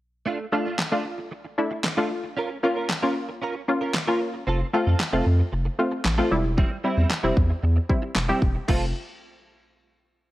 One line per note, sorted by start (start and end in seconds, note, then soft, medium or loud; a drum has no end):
0.26 0.45 A3 medium
0.26 0.39 D4 medium
0.26 0.38 F4 medium
0.39 muted clean electric guitar stroke soft
0.52 0.66 A3 medium
0.52 0.74 A3 medium
0.52 0.74 D4 medium
0.52 0.65 D4 medium
0.52 0.74 F4 loud
0.52 0.64 F4 medium
0.65 0.77 A3 medium
0.65 0.78 D4 medium
0.65 0.79 F4 medium
0.79 muted clean electric guitar stroke soft
0.79 snare medium
0.79 clap loud
0.92 1.28 A3 medium
0.92 1.04 A3 medium
0.92 1.28 D4 medium
0.92 1.04 D4 medium
0.92 1.05 F4 medium
0.92 1.28 F4 medium
1.05 muted clean electric guitar stroke soft
1.18 muted clean electric guitar stroke soft
1.31 muted clean electric guitar stroke soft
1.44 muted clean electric guitar stroke soft
1.58 1.79 A3 medium
1.58 1.79 D4 medium
1.58 1.79 E4 medium
1.71 muted clean electric guitar stroke soft
1.84 muted clean electric guitar stroke soft
1.84 snare medium
1.84 clap loud
1.97 2.33 A3 medium
1.97 2.09 A3 medium
1.97 2.33 D4 medium
1.97 2.10 D4 medium
1.97 2.10 F4 medium
1.97 2.33 F4 loud
2.10 muted clean electric guitar stroke soft
2.23 muted clean electric guitar stroke soft
2.36 2.55 C#4 medium
2.36 2.50 F4 medium
2.36 2.49 A#4 medium
2.50 muted clean electric guitar stroke soft
2.63 2.84 A#3 medium
2.63 2.76 C#4 medium
2.63 2.85 C#4 medium
2.63 2.85 F4 loud
2.63 2.76 F4 medium
2.63 2.75 A#4 medium
2.76 2.88 C#4 medium
2.76 2.89 F4 medium
2.76 2.89 A#4 medium
2.89 snare medium
2.89 clap loud
3.02 3.38 A#3 medium
3.02 3.38 C#4 medium
3.02 3.14 C#4 medium
3.02 3.38 F4 medium
3.02 3.15 F4 medium
3.02 3.16 A#4 medium
3.16 muted clean electric guitar stroke soft
3.29 muted clean electric guitar stroke soft
3.42 3.60 C#4 medium
3.42 3.55 F4 medium
3.42 3.54 A#4 medium
3.55 muted clean electric guitar stroke medium
3.68 3.90 A#3 medium
3.68 3.90 C#4 medium
3.68 3.90 F4 medium
3.68 muted clean electric guitar stroke soft
3.81 3.93 C#4 soft
3.81 3.94 F4 medium
3.81 3.94 A#4 medium
3.94 muted clean electric guitar stroke soft
3.94 snare medium
3.94 clap loud
4.07 4.43 A#3 medium
4.07 4.44 C#4 medium
4.07 4.20 C#4 medium
4.07 4.44 F4 medium
4.07 4.20 F4 medium
4.07 4.21 A#4 medium
4.21 muted clean electric guitar stroke soft
4.34 muted clean electric guitar stroke soft
4.47 4.63 F1 loud
4.47 4.66 C4 medium
4.47 4.60 F4 medium
4.47 4.59 A4 medium
4.60 muted clean electric guitar stroke soft
4.73 4.95 A3 medium
4.73 4.87 C4 medium
4.73 4.95 C4 medium
4.73 4.95 F4 loud
4.73 4.86 F4 medium
4.73 4.85 A4 medium
4.86 4.95 F2 loud
4.86 4.98 C4 medium
4.86 4.99 F4 medium
4.86 5.00 A4 medium
5.00 muted clean electric guitar stroke soft
5.00 snare medium
5.00 clap loud
5.13 5.21 F1 medium
5.13 5.49 A3 medium
5.13 5.49 C4 medium
5.13 5.25 C4 medium
5.13 5.49 F4 medium
5.13 5.25 F4 medium
5.13 5.26 A4 medium
5.26 5.42 F2 loud
5.26 muted clean electric guitar stroke soft
5.39 muted clean electric guitar stroke soft
5.52 5.69 F1 medium
5.52 muted clean electric guitar stroke soft
5.65 muted clean electric guitar stroke soft
5.79 6.00 A3 medium
5.79 6.00 C4 medium
5.79 6.01 F4 medium
5.92 muted clean electric guitar stroke soft
6.05 6.21 A1 medium
6.05 muted clean electric guitar stroke soft
6.05 snare medium
6.05 clap loud
6.18 6.32 A3 medium
6.18 6.30 C4 medium
6.18 6.31 C4 medium
6.18 6.32 F4 medium
6.18 6.37 A4 medium
6.31 6.63 E1 medium
6.31 6.74 G3 medium
6.31 6.74 C4 medium
6.31 6.74 E4 loud
6.31 muted clean electric guitar stroke soft
6.44 muted clean electric guitar stroke soft
6.57 6.76 G3 medium
6.57 6.71 C4 medium
6.57 6.70 E4 medium
6.57 kick loud
6.71 muted clean electric guitar stroke soft
6.84 6.97 G3 medium
6.84 7.06 G3 medium
6.84 7.06 C4 medium
6.84 6.97 C4 medium
6.84 7.06 E4 loud
6.84 6.96 E4 medium
6.97 7.05 E2 loud
6.97 7.09 G3 soft
6.97 7.10 C4 medium
6.97 7.10 E4 medium
7.10 muted clean electric guitar stroke soft
7.10 snare medium
7.10 clap loud
7.23 7.32 E1 medium
7.23 7.59 G3 medium
7.23 7.35 G3 medium
7.23 7.59 C4 medium
7.23 7.36 C4 medium
7.23 7.37 E4 medium
7.23 7.60 E4 medium
7.37 7.53 E2 medium
7.37 muted clean electric guitar stroke soft
7.37 kick loud
7.50 muted clean electric guitar stroke soft
7.63 7.79 E2 loud
7.63 muted clean electric guitar stroke soft
7.76 muted clean electric guitar stroke soft
7.89 8.11 G3 medium
7.89 8.11 C4 medium
7.89 8.11 E4 medium
7.89 kick medium
8.02 muted clean electric guitar stroke medium
8.15 8.32 E1 medium
8.15 muted clean electric guitar stroke soft
8.15 snare medium
8.15 clap loud
8.29 8.64 G3 medium
8.29 8.41 G3 medium
8.29 8.65 C4 medium
8.29 8.41 C4 medium
8.29 8.42 E4 medium
8.29 8.65 G4 medium
8.42 8.58 E1 medium
8.42 kick medium
8.55 muted clean electric guitar stroke soft
8.68 8.93 F1 medium
8.68 8.93 A3 medium
8.68 8.84 C4 medium
8.68 8.93 C4 medium
8.68 8.93 F4 medium
8.68 8.85 F4 medium
8.68 8.85 A4 medium
8.68 kick loud
8.68 crash medium